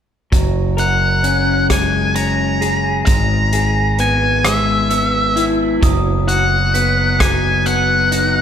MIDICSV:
0, 0, Header, 1, 6, 480
1, 0, Start_track
1, 0, Tempo, 917011
1, 166, Time_signature, 6, 3, 24, 8
1, 4405, End_track
2, 0, Start_track
2, 0, Title_t, "Glockenspiel"
2, 0, Program_c, 0, 9
2, 3052, Note_on_c, 0, 87, 55
2, 3529, Note_on_c, 0, 95, 52
2, 3530, Note_off_c, 0, 87, 0
2, 4009, Note_off_c, 0, 95, 0
2, 4011, Note_on_c, 0, 90, 51
2, 4405, Note_off_c, 0, 90, 0
2, 4405, End_track
3, 0, Start_track
3, 0, Title_t, "Lead electric guitar"
3, 0, Program_c, 1, 29
3, 416, Note_on_c, 1, 78, 62
3, 870, Note_off_c, 1, 78, 0
3, 899, Note_on_c, 1, 80, 67
3, 1128, Note_off_c, 1, 80, 0
3, 1130, Note_on_c, 1, 82, 63
3, 1587, Note_off_c, 1, 82, 0
3, 1602, Note_on_c, 1, 82, 61
3, 2093, Note_off_c, 1, 82, 0
3, 2095, Note_on_c, 1, 80, 60
3, 2333, Note_on_c, 1, 76, 53
3, 2338, Note_off_c, 1, 80, 0
3, 2849, Note_off_c, 1, 76, 0
3, 3287, Note_on_c, 1, 78, 62
3, 3769, Note_on_c, 1, 80, 75
3, 3782, Note_off_c, 1, 78, 0
3, 4008, Note_on_c, 1, 78, 63
3, 4016, Note_off_c, 1, 80, 0
3, 4405, Note_off_c, 1, 78, 0
3, 4405, End_track
4, 0, Start_track
4, 0, Title_t, "Clean electric guitar"
4, 0, Program_c, 2, 27
4, 167, Note_on_c, 2, 54, 40
4, 403, Note_on_c, 2, 70, 47
4, 647, Note_on_c, 2, 61, 47
4, 889, Note_on_c, 2, 56, 45
4, 1120, Note_off_c, 2, 61, 0
4, 1127, Note_on_c, 2, 61, 41
4, 1367, Note_off_c, 2, 54, 0
4, 1367, Note_on_c, 2, 68, 48
4, 1602, Note_off_c, 2, 56, 0
4, 1605, Note_off_c, 2, 70, 0
4, 1607, Note_off_c, 2, 61, 0
4, 1607, Note_off_c, 2, 68, 0
4, 1608, Note_on_c, 2, 56, 46
4, 1850, Note_on_c, 2, 68, 51
4, 2089, Note_on_c, 2, 59, 52
4, 2319, Note_off_c, 2, 56, 0
4, 2325, Note_on_c, 2, 56, 54
4, 2561, Note_off_c, 2, 59, 0
4, 2563, Note_on_c, 2, 59, 48
4, 2804, Note_on_c, 2, 64, 47
4, 3040, Note_off_c, 2, 56, 0
4, 3042, Note_on_c, 2, 54, 51
4, 3046, Note_off_c, 2, 64, 0
4, 3049, Note_off_c, 2, 68, 0
4, 3286, Note_on_c, 2, 66, 51
4, 3527, Note_off_c, 2, 59, 0
4, 3529, Note_on_c, 2, 59, 49
4, 3762, Note_off_c, 2, 54, 0
4, 3769, Note_on_c, 2, 54, 56
4, 4008, Note_off_c, 2, 59, 0
4, 4010, Note_on_c, 2, 59, 51
4, 4247, Note_on_c, 2, 63, 50
4, 4405, Note_off_c, 2, 54, 0
4, 4405, Note_off_c, 2, 59, 0
4, 4405, Note_off_c, 2, 63, 0
4, 4405, Note_off_c, 2, 66, 0
4, 4405, End_track
5, 0, Start_track
5, 0, Title_t, "Fingered electric bass"
5, 0, Program_c, 3, 33
5, 170, Note_on_c, 3, 30, 55
5, 1587, Note_off_c, 3, 30, 0
5, 1609, Note_on_c, 3, 32, 51
5, 3028, Note_off_c, 3, 32, 0
5, 3050, Note_on_c, 3, 30, 56
5, 4405, Note_off_c, 3, 30, 0
5, 4405, End_track
6, 0, Start_track
6, 0, Title_t, "Drums"
6, 170, Note_on_c, 9, 36, 68
6, 170, Note_on_c, 9, 42, 49
6, 222, Note_off_c, 9, 36, 0
6, 223, Note_off_c, 9, 42, 0
6, 409, Note_on_c, 9, 42, 37
6, 462, Note_off_c, 9, 42, 0
6, 649, Note_on_c, 9, 42, 37
6, 702, Note_off_c, 9, 42, 0
6, 889, Note_on_c, 9, 36, 44
6, 890, Note_on_c, 9, 37, 65
6, 890, Note_on_c, 9, 42, 54
6, 942, Note_off_c, 9, 36, 0
6, 942, Note_off_c, 9, 37, 0
6, 942, Note_off_c, 9, 42, 0
6, 1129, Note_on_c, 9, 42, 39
6, 1181, Note_off_c, 9, 42, 0
6, 1371, Note_on_c, 9, 42, 38
6, 1424, Note_off_c, 9, 42, 0
6, 1605, Note_on_c, 9, 42, 49
6, 1608, Note_on_c, 9, 36, 66
6, 1657, Note_off_c, 9, 42, 0
6, 1661, Note_off_c, 9, 36, 0
6, 1846, Note_on_c, 9, 42, 42
6, 1898, Note_off_c, 9, 42, 0
6, 2087, Note_on_c, 9, 42, 39
6, 2139, Note_off_c, 9, 42, 0
6, 2327, Note_on_c, 9, 37, 70
6, 2327, Note_on_c, 9, 42, 59
6, 2379, Note_off_c, 9, 37, 0
6, 2379, Note_off_c, 9, 42, 0
6, 2568, Note_on_c, 9, 42, 39
6, 2620, Note_off_c, 9, 42, 0
6, 2810, Note_on_c, 9, 42, 38
6, 2862, Note_off_c, 9, 42, 0
6, 3049, Note_on_c, 9, 36, 61
6, 3050, Note_on_c, 9, 42, 49
6, 3102, Note_off_c, 9, 36, 0
6, 3102, Note_off_c, 9, 42, 0
6, 3290, Note_on_c, 9, 42, 39
6, 3343, Note_off_c, 9, 42, 0
6, 3532, Note_on_c, 9, 42, 39
6, 3585, Note_off_c, 9, 42, 0
6, 3769, Note_on_c, 9, 36, 52
6, 3770, Note_on_c, 9, 37, 80
6, 3770, Note_on_c, 9, 42, 54
6, 3822, Note_off_c, 9, 36, 0
6, 3822, Note_off_c, 9, 37, 0
6, 3822, Note_off_c, 9, 42, 0
6, 4010, Note_on_c, 9, 42, 38
6, 4063, Note_off_c, 9, 42, 0
6, 4251, Note_on_c, 9, 42, 44
6, 4303, Note_off_c, 9, 42, 0
6, 4405, End_track
0, 0, End_of_file